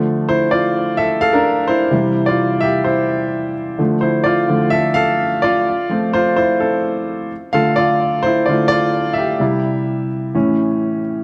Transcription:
<<
  \new Staff \with { instrumentName = "Grand piano" } { \time 4/4 \key d \minor \tempo 4 = 128 r8 <e' c''>8 <f' d''>4 <a' e''>8 <a' f''>16 <d' bes'>8. <e' c''>8~ | <e' c''>8. <f' d''>8. <g' e''>8 <e' c''>4. r8 | r8 <e' c''>8 <f' d''>4 <a' e''>8 <a' f''>4 <f' d''>8~ | <f' d''>4 <f' c''>8 <e' c''>8 <c' a'>4. r8 |
<a' f''>8 <f' d''>4 <e' c''>8 <f' d''>8 <f' d''>4 <g' e''>8~ | <g' e''>2.~ <g' e''>8 r8 | }
  \new Staff \with { instrumentName = "Grand piano" } { \clef bass \time 4/4 \key d \minor <d f a>4 r2. | <c e g>8 r2. r8 | <d f a>4. <d f a>8 r2 | r8 <f a c'>4. r2 |
<d a f'>4. r8 <d a>8 r4. | <c g e'>4. r8 <a, e cis'>8 r4. | }
>>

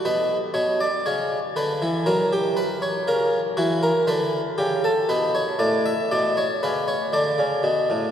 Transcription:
<<
  \new Staff \with { instrumentName = "Harpsichord" } { \time 4/4 \key b \phrygian \tempo 4 = 59 b'8 cis''16 d''16 cis''8 b'8 ais'16 g'16 b'16 cis''16 ais'8 fis'16 ais'16 | b'8 g'16 a'16 b'16 cis''16 d''16 e''16 d''16 cis''16 b'16 cis''16 d''4 | }
  \new Staff \with { instrumentName = "Harpsichord" } { \clef bass \time 4/4 \key b \phrygian b,8 b,8 cis8 d16 e16 fis4 cis8 e8 | d8 cis8 b,8 a,8 b,8 cis8 d16 cis16 b,16 a,16 | }
>>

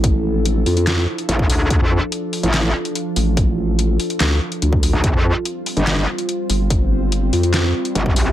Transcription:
<<
  \new Staff \with { instrumentName = "Ambient pad" } { \time 4/4 \key d \minor \tempo 4 = 144 << { <f d' a'>1~ | <f d' a'>1~ | <f d' a'>1 | <g c' c''>1~ |
<g c' c''>1 | } \\ { e'1 | f'1~ | f'1~ | f'1~ |
f'1 | } >> }
  \new Staff \with { instrumentName = "Wobble bass" } { \clef bass \time 4/4 \key d \minor a,,4. f,4 r4. | r2. r8 a,,8~ | a,,4. r8 d,8 r8 d,8 r8 | r2. r8 g,,8~ |
g,,4. f,4 r4. | }
  \new Staff \with { instrumentName = "Wobble bass" } { \clef bass \time 4/4 \key d \minor r2. a,,8 d,8 | d,16 f,8 r4 a,,8. r4. | r2. r8. d,16 | c,16 f,8 r4 g,,8. r4. |
r2. g,,8 c,8 | }
  \new DrumStaff \with { instrumentName = "Drums" } \drummode { \time 4/4 <hh bd>4 hh8 hho16 hh16 <hc hh sn>8. hh16 hh16 bd16 hho8 | <hh bd>4 hh8 hho16 hh16 <hc hh sn>8. hh16 hh8 hho8 | <hh bd>4 hh8 hho16 hh16 <hc hh sn>8. hh16 hh16 bd16 hho8 | <hh bd>4 hh8 hho16 hh16 <hc hh sn>8. hh16 hh8 hho8 |
<hh bd>4 hh8 hho16 hh16 <hc hh sn>8. hh16 hh16 bd16 hho8 | }
>>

